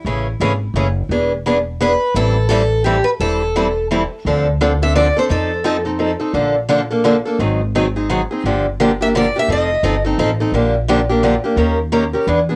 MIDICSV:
0, 0, Header, 1, 4, 480
1, 0, Start_track
1, 0, Key_signature, 0, "minor"
1, 0, Tempo, 349243
1, 69, Time_signature, 3, 2, 24, 8
1, 5844, Key_signature, -1, "minor"
1, 17257, End_track
2, 0, Start_track
2, 0, Title_t, "Steel-string acoustic guitar"
2, 0, Program_c, 0, 25
2, 2503, Note_on_c, 0, 71, 78
2, 2966, Note_off_c, 0, 71, 0
2, 2971, Note_on_c, 0, 69, 93
2, 3403, Note_off_c, 0, 69, 0
2, 3419, Note_on_c, 0, 69, 84
2, 3877, Note_off_c, 0, 69, 0
2, 3906, Note_on_c, 0, 67, 65
2, 4180, Note_on_c, 0, 71, 78
2, 4182, Note_off_c, 0, 67, 0
2, 4249, Note_off_c, 0, 71, 0
2, 4405, Note_on_c, 0, 69, 78
2, 5310, Note_off_c, 0, 69, 0
2, 6633, Note_on_c, 0, 76, 81
2, 6804, Note_off_c, 0, 76, 0
2, 6809, Note_on_c, 0, 74, 77
2, 7123, Note_off_c, 0, 74, 0
2, 7129, Note_on_c, 0, 72, 78
2, 7197, Note_off_c, 0, 72, 0
2, 7300, Note_on_c, 0, 69, 77
2, 8006, Note_off_c, 0, 69, 0
2, 12399, Note_on_c, 0, 76, 90
2, 12468, Note_off_c, 0, 76, 0
2, 12602, Note_on_c, 0, 74, 72
2, 12903, Note_off_c, 0, 74, 0
2, 12908, Note_on_c, 0, 76, 86
2, 13040, Note_off_c, 0, 76, 0
2, 13088, Note_on_c, 0, 75, 83
2, 13775, Note_off_c, 0, 75, 0
2, 17257, End_track
3, 0, Start_track
3, 0, Title_t, "Steel-string acoustic guitar"
3, 0, Program_c, 1, 25
3, 82, Note_on_c, 1, 49, 50
3, 91, Note_on_c, 1, 52, 55
3, 91, Note_on_c, 1, 57, 58
3, 92, Note_on_c, 1, 68, 62
3, 94, Note_on_c, 1, 61, 54
3, 356, Note_off_c, 1, 49, 0
3, 361, Note_off_c, 1, 52, 0
3, 361, Note_off_c, 1, 57, 0
3, 362, Note_off_c, 1, 61, 0
3, 362, Note_off_c, 1, 68, 0
3, 556, Note_on_c, 1, 49, 79
3, 565, Note_on_c, 1, 52, 85
3, 567, Note_on_c, 1, 57, 80
3, 570, Note_on_c, 1, 61, 79
3, 572, Note_on_c, 1, 68, 96
3, 702, Note_off_c, 1, 49, 0
3, 707, Note_off_c, 1, 52, 0
3, 708, Note_off_c, 1, 57, 0
3, 709, Note_off_c, 1, 61, 0
3, 710, Note_off_c, 1, 68, 0
3, 1040, Note_on_c, 1, 49, 75
3, 1043, Note_on_c, 1, 57, 72
3, 1045, Note_on_c, 1, 52, 69
3, 1054, Note_on_c, 1, 61, 86
3, 1055, Note_on_c, 1, 68, 74
3, 1185, Note_off_c, 1, 49, 0
3, 1187, Note_off_c, 1, 57, 0
3, 1188, Note_off_c, 1, 52, 0
3, 1192, Note_off_c, 1, 61, 0
3, 1193, Note_off_c, 1, 68, 0
3, 1528, Note_on_c, 1, 52, 58
3, 1530, Note_on_c, 1, 59, 64
3, 1535, Note_on_c, 1, 62, 59
3, 1539, Note_on_c, 1, 68, 58
3, 1802, Note_off_c, 1, 52, 0
3, 1803, Note_off_c, 1, 59, 0
3, 1806, Note_off_c, 1, 62, 0
3, 1808, Note_off_c, 1, 68, 0
3, 2004, Note_on_c, 1, 52, 86
3, 2012, Note_on_c, 1, 59, 76
3, 2016, Note_on_c, 1, 62, 79
3, 2022, Note_on_c, 1, 68, 87
3, 2149, Note_off_c, 1, 52, 0
3, 2153, Note_off_c, 1, 59, 0
3, 2155, Note_off_c, 1, 62, 0
3, 2158, Note_off_c, 1, 68, 0
3, 2481, Note_on_c, 1, 52, 80
3, 2481, Note_on_c, 1, 59, 77
3, 2492, Note_on_c, 1, 62, 93
3, 2494, Note_on_c, 1, 68, 82
3, 2628, Note_off_c, 1, 52, 0
3, 2628, Note_off_c, 1, 59, 0
3, 2634, Note_off_c, 1, 62, 0
3, 2634, Note_off_c, 1, 68, 0
3, 2957, Note_on_c, 1, 52, 59
3, 2964, Note_on_c, 1, 55, 60
3, 2969, Note_on_c, 1, 60, 55
3, 2969, Note_on_c, 1, 64, 65
3, 2976, Note_on_c, 1, 69, 63
3, 3239, Note_off_c, 1, 52, 0
3, 3242, Note_off_c, 1, 55, 0
3, 3245, Note_off_c, 1, 60, 0
3, 3245, Note_off_c, 1, 64, 0
3, 3248, Note_off_c, 1, 69, 0
3, 3436, Note_on_c, 1, 52, 91
3, 3444, Note_on_c, 1, 55, 92
3, 3449, Note_on_c, 1, 60, 86
3, 3449, Note_on_c, 1, 64, 82
3, 3453, Note_on_c, 1, 69, 84
3, 3587, Note_off_c, 1, 52, 0
3, 3591, Note_off_c, 1, 55, 0
3, 3594, Note_off_c, 1, 60, 0
3, 3594, Note_off_c, 1, 64, 0
3, 3596, Note_off_c, 1, 69, 0
3, 3925, Note_on_c, 1, 52, 81
3, 3927, Note_on_c, 1, 55, 73
3, 3931, Note_on_c, 1, 60, 76
3, 3933, Note_on_c, 1, 64, 70
3, 3937, Note_on_c, 1, 69, 77
3, 4072, Note_off_c, 1, 52, 0
3, 4073, Note_off_c, 1, 55, 0
3, 4075, Note_off_c, 1, 60, 0
3, 4076, Note_off_c, 1, 64, 0
3, 4078, Note_off_c, 1, 69, 0
3, 4412, Note_on_c, 1, 52, 47
3, 4414, Note_on_c, 1, 55, 57
3, 4417, Note_on_c, 1, 60, 64
3, 4422, Note_on_c, 1, 64, 60
3, 4425, Note_on_c, 1, 69, 58
3, 4688, Note_off_c, 1, 52, 0
3, 4689, Note_off_c, 1, 55, 0
3, 4690, Note_off_c, 1, 60, 0
3, 4693, Note_off_c, 1, 64, 0
3, 4694, Note_off_c, 1, 69, 0
3, 4888, Note_on_c, 1, 52, 77
3, 4891, Note_on_c, 1, 55, 82
3, 4896, Note_on_c, 1, 60, 82
3, 4903, Note_on_c, 1, 64, 80
3, 4904, Note_on_c, 1, 69, 92
3, 5034, Note_off_c, 1, 52, 0
3, 5035, Note_off_c, 1, 55, 0
3, 5038, Note_off_c, 1, 60, 0
3, 5041, Note_off_c, 1, 64, 0
3, 5042, Note_off_c, 1, 69, 0
3, 5370, Note_on_c, 1, 52, 70
3, 5376, Note_on_c, 1, 55, 80
3, 5380, Note_on_c, 1, 60, 81
3, 5380, Note_on_c, 1, 64, 88
3, 5387, Note_on_c, 1, 69, 83
3, 5515, Note_off_c, 1, 52, 0
3, 5518, Note_off_c, 1, 55, 0
3, 5520, Note_off_c, 1, 60, 0
3, 5520, Note_off_c, 1, 64, 0
3, 5523, Note_off_c, 1, 69, 0
3, 5859, Note_on_c, 1, 50, 54
3, 5865, Note_on_c, 1, 53, 57
3, 5867, Note_on_c, 1, 60, 56
3, 5874, Note_on_c, 1, 62, 71
3, 5876, Note_on_c, 1, 69, 71
3, 6131, Note_off_c, 1, 50, 0
3, 6135, Note_off_c, 1, 53, 0
3, 6135, Note_off_c, 1, 60, 0
3, 6139, Note_off_c, 1, 62, 0
3, 6140, Note_off_c, 1, 69, 0
3, 6331, Note_on_c, 1, 50, 77
3, 6335, Note_on_c, 1, 53, 91
3, 6338, Note_on_c, 1, 62, 95
3, 6340, Note_on_c, 1, 60, 90
3, 6345, Note_on_c, 1, 69, 90
3, 6476, Note_off_c, 1, 50, 0
3, 6478, Note_off_c, 1, 53, 0
3, 6479, Note_off_c, 1, 62, 0
3, 6480, Note_off_c, 1, 60, 0
3, 6483, Note_off_c, 1, 69, 0
3, 6625, Note_on_c, 1, 69, 50
3, 6635, Note_on_c, 1, 62, 40
3, 6649, Note_on_c, 1, 60, 44
3, 6795, Note_off_c, 1, 60, 0
3, 6800, Note_off_c, 1, 69, 0
3, 6803, Note_off_c, 1, 62, 0
3, 6807, Note_on_c, 1, 50, 77
3, 6811, Note_on_c, 1, 53, 75
3, 6812, Note_on_c, 1, 60, 84
3, 6816, Note_on_c, 1, 69, 86
3, 6820, Note_on_c, 1, 62, 85
3, 6953, Note_off_c, 1, 50, 0
3, 6955, Note_off_c, 1, 53, 0
3, 6956, Note_off_c, 1, 60, 0
3, 6958, Note_off_c, 1, 69, 0
3, 6960, Note_off_c, 1, 62, 0
3, 7099, Note_on_c, 1, 69, 55
3, 7112, Note_on_c, 1, 62, 42
3, 7117, Note_on_c, 1, 60, 43
3, 7260, Note_off_c, 1, 60, 0
3, 7269, Note_off_c, 1, 69, 0
3, 7275, Note_on_c, 1, 53, 52
3, 7276, Note_on_c, 1, 60, 55
3, 7280, Note_off_c, 1, 62, 0
3, 7285, Note_on_c, 1, 63, 61
3, 7286, Note_on_c, 1, 69, 64
3, 7558, Note_off_c, 1, 53, 0
3, 7559, Note_off_c, 1, 60, 0
3, 7563, Note_off_c, 1, 63, 0
3, 7564, Note_off_c, 1, 69, 0
3, 7753, Note_on_c, 1, 53, 88
3, 7757, Note_on_c, 1, 60, 78
3, 7766, Note_on_c, 1, 63, 91
3, 7772, Note_on_c, 1, 69, 97
3, 7906, Note_off_c, 1, 53, 0
3, 7908, Note_off_c, 1, 60, 0
3, 7912, Note_off_c, 1, 63, 0
3, 7915, Note_off_c, 1, 69, 0
3, 8038, Note_on_c, 1, 69, 48
3, 8049, Note_on_c, 1, 63, 49
3, 8063, Note_on_c, 1, 60, 45
3, 8220, Note_off_c, 1, 60, 0
3, 8225, Note_off_c, 1, 63, 0
3, 8228, Note_off_c, 1, 69, 0
3, 8230, Note_on_c, 1, 53, 76
3, 8237, Note_on_c, 1, 60, 76
3, 8242, Note_on_c, 1, 63, 83
3, 8244, Note_on_c, 1, 69, 87
3, 8383, Note_off_c, 1, 53, 0
3, 8387, Note_off_c, 1, 60, 0
3, 8390, Note_off_c, 1, 63, 0
3, 8391, Note_off_c, 1, 69, 0
3, 8515, Note_on_c, 1, 69, 51
3, 8528, Note_on_c, 1, 63, 42
3, 8536, Note_on_c, 1, 60, 41
3, 8706, Note_off_c, 1, 69, 0
3, 8712, Note_off_c, 1, 63, 0
3, 8714, Note_off_c, 1, 60, 0
3, 8714, Note_on_c, 1, 50, 57
3, 8718, Note_on_c, 1, 53, 51
3, 8719, Note_on_c, 1, 58, 59
3, 8722, Note_on_c, 1, 69, 66
3, 8724, Note_on_c, 1, 62, 62
3, 8996, Note_off_c, 1, 50, 0
3, 8999, Note_off_c, 1, 53, 0
3, 8999, Note_off_c, 1, 58, 0
3, 9000, Note_off_c, 1, 69, 0
3, 9001, Note_off_c, 1, 62, 0
3, 9190, Note_on_c, 1, 50, 86
3, 9191, Note_on_c, 1, 53, 81
3, 9200, Note_on_c, 1, 58, 87
3, 9201, Note_on_c, 1, 62, 98
3, 9205, Note_on_c, 1, 69, 88
3, 9343, Note_off_c, 1, 50, 0
3, 9343, Note_off_c, 1, 53, 0
3, 9348, Note_off_c, 1, 58, 0
3, 9348, Note_off_c, 1, 62, 0
3, 9350, Note_off_c, 1, 69, 0
3, 9491, Note_on_c, 1, 69, 52
3, 9504, Note_on_c, 1, 62, 53
3, 9514, Note_on_c, 1, 58, 38
3, 9668, Note_off_c, 1, 62, 0
3, 9672, Note_off_c, 1, 58, 0
3, 9673, Note_off_c, 1, 69, 0
3, 9676, Note_on_c, 1, 50, 85
3, 9683, Note_on_c, 1, 53, 75
3, 9684, Note_on_c, 1, 62, 92
3, 9688, Note_on_c, 1, 58, 89
3, 9693, Note_on_c, 1, 69, 88
3, 9825, Note_off_c, 1, 50, 0
3, 9828, Note_off_c, 1, 53, 0
3, 9829, Note_off_c, 1, 62, 0
3, 9831, Note_off_c, 1, 58, 0
3, 9834, Note_off_c, 1, 69, 0
3, 9971, Note_on_c, 1, 69, 54
3, 9989, Note_on_c, 1, 62, 46
3, 9997, Note_on_c, 1, 58, 42
3, 10152, Note_off_c, 1, 69, 0
3, 10161, Note_off_c, 1, 62, 0
3, 10164, Note_on_c, 1, 51, 58
3, 10165, Note_off_c, 1, 58, 0
3, 10170, Note_on_c, 1, 60, 63
3, 10172, Note_on_c, 1, 54, 59
3, 10173, Note_on_c, 1, 63, 65
3, 10177, Note_on_c, 1, 68, 65
3, 10440, Note_off_c, 1, 51, 0
3, 10443, Note_off_c, 1, 60, 0
3, 10444, Note_off_c, 1, 54, 0
3, 10445, Note_off_c, 1, 63, 0
3, 10447, Note_off_c, 1, 68, 0
3, 10651, Note_on_c, 1, 51, 76
3, 10658, Note_on_c, 1, 54, 87
3, 10661, Note_on_c, 1, 60, 77
3, 10661, Note_on_c, 1, 63, 94
3, 10662, Note_on_c, 1, 68, 85
3, 10792, Note_off_c, 1, 51, 0
3, 10795, Note_off_c, 1, 54, 0
3, 10797, Note_off_c, 1, 60, 0
3, 10797, Note_off_c, 1, 63, 0
3, 10797, Note_off_c, 1, 68, 0
3, 10940, Note_on_c, 1, 68, 51
3, 10951, Note_on_c, 1, 63, 49
3, 10967, Note_on_c, 1, 60, 38
3, 11116, Note_off_c, 1, 60, 0
3, 11116, Note_off_c, 1, 68, 0
3, 11121, Note_off_c, 1, 63, 0
3, 11125, Note_on_c, 1, 51, 84
3, 11126, Note_on_c, 1, 54, 82
3, 11132, Note_on_c, 1, 60, 75
3, 11138, Note_on_c, 1, 63, 78
3, 11140, Note_on_c, 1, 68, 91
3, 11268, Note_off_c, 1, 51, 0
3, 11269, Note_off_c, 1, 54, 0
3, 11272, Note_off_c, 1, 60, 0
3, 11275, Note_off_c, 1, 63, 0
3, 11275, Note_off_c, 1, 68, 0
3, 11418, Note_on_c, 1, 68, 53
3, 11436, Note_on_c, 1, 63, 44
3, 11442, Note_on_c, 1, 60, 43
3, 11594, Note_off_c, 1, 68, 0
3, 11603, Note_off_c, 1, 63, 0
3, 11606, Note_off_c, 1, 60, 0
3, 11621, Note_on_c, 1, 50, 59
3, 11625, Note_on_c, 1, 53, 65
3, 11628, Note_on_c, 1, 58, 65
3, 11631, Note_on_c, 1, 62, 63
3, 11634, Note_on_c, 1, 67, 61
3, 11887, Note_off_c, 1, 50, 0
3, 11889, Note_off_c, 1, 53, 0
3, 11890, Note_off_c, 1, 58, 0
3, 11892, Note_off_c, 1, 62, 0
3, 11894, Note_off_c, 1, 67, 0
3, 12094, Note_on_c, 1, 50, 94
3, 12097, Note_on_c, 1, 53, 87
3, 12097, Note_on_c, 1, 58, 88
3, 12107, Note_on_c, 1, 62, 93
3, 12112, Note_on_c, 1, 67, 96
3, 12231, Note_off_c, 1, 50, 0
3, 12233, Note_off_c, 1, 53, 0
3, 12233, Note_off_c, 1, 58, 0
3, 12238, Note_off_c, 1, 62, 0
3, 12240, Note_off_c, 1, 67, 0
3, 12380, Note_on_c, 1, 67, 52
3, 12393, Note_on_c, 1, 62, 45
3, 12399, Note_on_c, 1, 58, 45
3, 12554, Note_off_c, 1, 67, 0
3, 12561, Note_off_c, 1, 62, 0
3, 12564, Note_off_c, 1, 58, 0
3, 12575, Note_on_c, 1, 53, 88
3, 12576, Note_on_c, 1, 50, 81
3, 12580, Note_on_c, 1, 58, 79
3, 12582, Note_on_c, 1, 62, 92
3, 12589, Note_on_c, 1, 67, 91
3, 12712, Note_off_c, 1, 50, 0
3, 12712, Note_off_c, 1, 53, 0
3, 12714, Note_off_c, 1, 58, 0
3, 12715, Note_off_c, 1, 62, 0
3, 12719, Note_off_c, 1, 67, 0
3, 12862, Note_on_c, 1, 67, 57
3, 12874, Note_on_c, 1, 62, 47
3, 12886, Note_on_c, 1, 58, 44
3, 13035, Note_off_c, 1, 67, 0
3, 13041, Note_off_c, 1, 62, 0
3, 13046, Note_on_c, 1, 53, 60
3, 13047, Note_off_c, 1, 58, 0
3, 13055, Note_on_c, 1, 60, 64
3, 13056, Note_on_c, 1, 63, 55
3, 13060, Note_on_c, 1, 69, 61
3, 13318, Note_off_c, 1, 53, 0
3, 13322, Note_off_c, 1, 60, 0
3, 13323, Note_off_c, 1, 63, 0
3, 13325, Note_off_c, 1, 69, 0
3, 13516, Note_on_c, 1, 53, 76
3, 13522, Note_on_c, 1, 60, 88
3, 13531, Note_on_c, 1, 63, 97
3, 13532, Note_on_c, 1, 69, 90
3, 13661, Note_off_c, 1, 53, 0
3, 13664, Note_off_c, 1, 60, 0
3, 13669, Note_off_c, 1, 63, 0
3, 13669, Note_off_c, 1, 69, 0
3, 13807, Note_on_c, 1, 69, 56
3, 13825, Note_on_c, 1, 63, 56
3, 13833, Note_on_c, 1, 60, 46
3, 13987, Note_off_c, 1, 69, 0
3, 13989, Note_off_c, 1, 60, 0
3, 13991, Note_off_c, 1, 63, 0
3, 14003, Note_on_c, 1, 53, 83
3, 14006, Note_on_c, 1, 60, 94
3, 14007, Note_on_c, 1, 63, 84
3, 14014, Note_on_c, 1, 69, 90
3, 14145, Note_off_c, 1, 53, 0
3, 14146, Note_off_c, 1, 60, 0
3, 14147, Note_off_c, 1, 63, 0
3, 14150, Note_off_c, 1, 69, 0
3, 14295, Note_on_c, 1, 69, 52
3, 14307, Note_on_c, 1, 63, 52
3, 14317, Note_on_c, 1, 60, 48
3, 14471, Note_off_c, 1, 69, 0
3, 14477, Note_off_c, 1, 63, 0
3, 14479, Note_on_c, 1, 50, 58
3, 14482, Note_off_c, 1, 60, 0
3, 14485, Note_on_c, 1, 53, 59
3, 14490, Note_on_c, 1, 58, 60
3, 14494, Note_on_c, 1, 67, 69
3, 14495, Note_on_c, 1, 62, 62
3, 14754, Note_off_c, 1, 50, 0
3, 14757, Note_off_c, 1, 53, 0
3, 14759, Note_off_c, 1, 58, 0
3, 14761, Note_off_c, 1, 67, 0
3, 14762, Note_off_c, 1, 62, 0
3, 14957, Note_on_c, 1, 50, 91
3, 14966, Note_on_c, 1, 53, 102
3, 14970, Note_on_c, 1, 58, 76
3, 14970, Note_on_c, 1, 67, 89
3, 14972, Note_on_c, 1, 62, 97
3, 15101, Note_off_c, 1, 50, 0
3, 15106, Note_off_c, 1, 53, 0
3, 15107, Note_off_c, 1, 58, 0
3, 15108, Note_off_c, 1, 67, 0
3, 15109, Note_off_c, 1, 62, 0
3, 15246, Note_on_c, 1, 67, 59
3, 15257, Note_on_c, 1, 62, 58
3, 15273, Note_on_c, 1, 58, 46
3, 15423, Note_off_c, 1, 62, 0
3, 15425, Note_off_c, 1, 58, 0
3, 15426, Note_off_c, 1, 67, 0
3, 15433, Note_on_c, 1, 53, 91
3, 15434, Note_on_c, 1, 50, 74
3, 15440, Note_on_c, 1, 62, 84
3, 15442, Note_on_c, 1, 58, 87
3, 15445, Note_on_c, 1, 67, 90
3, 15579, Note_off_c, 1, 50, 0
3, 15579, Note_off_c, 1, 53, 0
3, 15582, Note_off_c, 1, 62, 0
3, 15583, Note_off_c, 1, 58, 0
3, 15585, Note_off_c, 1, 67, 0
3, 15718, Note_on_c, 1, 67, 48
3, 15732, Note_on_c, 1, 62, 42
3, 15738, Note_on_c, 1, 58, 41
3, 15888, Note_off_c, 1, 58, 0
3, 15899, Note_off_c, 1, 67, 0
3, 15900, Note_on_c, 1, 51, 56
3, 15904, Note_on_c, 1, 58, 58
3, 15907, Note_on_c, 1, 61, 69
3, 15908, Note_off_c, 1, 62, 0
3, 15913, Note_on_c, 1, 70, 61
3, 15915, Note_on_c, 1, 67, 69
3, 16184, Note_off_c, 1, 51, 0
3, 16186, Note_off_c, 1, 58, 0
3, 16187, Note_off_c, 1, 61, 0
3, 16190, Note_off_c, 1, 70, 0
3, 16191, Note_off_c, 1, 67, 0
3, 16382, Note_on_c, 1, 51, 76
3, 16386, Note_on_c, 1, 58, 90
3, 16392, Note_on_c, 1, 61, 80
3, 16392, Note_on_c, 1, 70, 84
3, 16394, Note_on_c, 1, 67, 91
3, 16533, Note_off_c, 1, 51, 0
3, 16535, Note_off_c, 1, 58, 0
3, 16538, Note_off_c, 1, 61, 0
3, 16538, Note_off_c, 1, 70, 0
3, 16539, Note_off_c, 1, 67, 0
3, 16676, Note_on_c, 1, 70, 56
3, 16687, Note_on_c, 1, 67, 44
3, 16696, Note_on_c, 1, 61, 46
3, 16860, Note_off_c, 1, 70, 0
3, 16866, Note_off_c, 1, 67, 0
3, 16868, Note_off_c, 1, 61, 0
3, 16870, Note_on_c, 1, 52, 77
3, 16874, Note_on_c, 1, 59, 74
3, 16884, Note_on_c, 1, 62, 81
3, 16887, Note_on_c, 1, 68, 81
3, 17018, Note_off_c, 1, 52, 0
3, 17019, Note_off_c, 1, 59, 0
3, 17024, Note_off_c, 1, 62, 0
3, 17026, Note_off_c, 1, 68, 0
3, 17168, Note_on_c, 1, 68, 49
3, 17181, Note_on_c, 1, 62, 49
3, 17191, Note_on_c, 1, 59, 43
3, 17257, Note_off_c, 1, 59, 0
3, 17257, Note_off_c, 1, 62, 0
3, 17257, Note_off_c, 1, 68, 0
3, 17257, End_track
4, 0, Start_track
4, 0, Title_t, "Upright bass"
4, 0, Program_c, 2, 32
4, 64, Note_on_c, 2, 33, 68
4, 452, Note_off_c, 2, 33, 0
4, 549, Note_on_c, 2, 32, 67
4, 959, Note_off_c, 2, 32, 0
4, 1015, Note_on_c, 2, 30, 69
4, 1432, Note_off_c, 2, 30, 0
4, 1500, Note_on_c, 2, 28, 63
4, 2662, Note_off_c, 2, 28, 0
4, 2947, Note_on_c, 2, 33, 73
4, 4107, Note_off_c, 2, 33, 0
4, 4393, Note_on_c, 2, 28, 57
4, 5550, Note_off_c, 2, 28, 0
4, 5841, Note_on_c, 2, 38, 69
4, 6994, Note_off_c, 2, 38, 0
4, 7284, Note_on_c, 2, 41, 67
4, 8434, Note_off_c, 2, 41, 0
4, 8707, Note_on_c, 2, 34, 63
4, 9862, Note_off_c, 2, 34, 0
4, 10157, Note_on_c, 2, 32, 70
4, 11307, Note_off_c, 2, 32, 0
4, 11598, Note_on_c, 2, 31, 68
4, 12747, Note_off_c, 2, 31, 0
4, 13033, Note_on_c, 2, 29, 71
4, 13416, Note_off_c, 2, 29, 0
4, 13510, Note_on_c, 2, 31, 72
4, 13918, Note_off_c, 2, 31, 0
4, 13994, Note_on_c, 2, 33, 75
4, 14400, Note_off_c, 2, 33, 0
4, 14455, Note_on_c, 2, 34, 67
4, 15612, Note_off_c, 2, 34, 0
4, 15889, Note_on_c, 2, 39, 72
4, 16665, Note_off_c, 2, 39, 0
4, 16863, Note_on_c, 2, 40, 79
4, 17250, Note_off_c, 2, 40, 0
4, 17257, End_track
0, 0, End_of_file